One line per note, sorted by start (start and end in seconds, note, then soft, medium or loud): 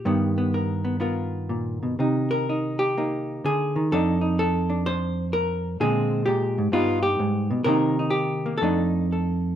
0.00 1.00 G4 medium
0.05 1.97 G2 medium
0.05 3.75 D#3 medium
0.05 0.37 B3 soft
0.38 0.83 B3 soft
0.54 1.01 A#4 soft
0.85 0.99 B3 soft
1.00 1.97 B3 soft
1.00 1.97 F4 soft
1.00 1.97 A#4 soft
1.49 1.82 A#2 soft
1.83 1.99 B2 medium
1.99 3.44 C3 medium
1.99 2.49 D#4 soft
2.31 2.79 A#4 medium
2.49 2.98 D#4 soft
2.79 3.44 G4 medium
2.97 3.91 A#3 soft
2.97 3.91 D#4 soft
3.44 3.76 D3 medium
3.44 3.92 G#4 medium
3.76 3.92 D#3 medium
3.92 5.80 F2 medium
3.92 4.69 D4 soft
3.92 4.20 D#4 soft
3.92 4.38 A4 medium
4.21 5.78 D#4 soft
4.39 4.86 A4 medium
4.70 5.78 D4 soft
4.86 5.33 C5 loud
5.33 5.80 A#4 medium
5.80 6.26 A#2 medium
5.80 6.27 D3 soft
5.80 6.73 G#3 soft
5.80 6.25 C4 soft
5.80 6.73 G#4 medium
6.26 6.57 A#2 medium
6.26 6.73 G4 medium
6.58 6.72 G#2 medium
6.72 7.19 G2 medium
6.72 7.66 G3 soft
6.72 7.65 B3 soft
6.72 7.66 D#4 soft
6.72 7.02 F4 medium
7.03 7.64 G4 medium
7.20 7.50 G#2 medium
7.51 7.65 B2 medium
7.64 8.59 C3 medium
7.64 8.61 D#3 soft
7.64 8.45 A#3 soft
7.64 7.98 D#4 soft
7.64 8.10 A#4 loud
7.99 8.60 D#4 soft
8.10 8.57 G4 medium
8.46 8.60 A#3 soft
8.58 9.56 F2 medium
8.58 9.11 A4 medium
8.62 9.56 A3 soft
8.62 9.56 D4 soft
8.62 9.56 D#4 soft
9.12 9.56 A4 soft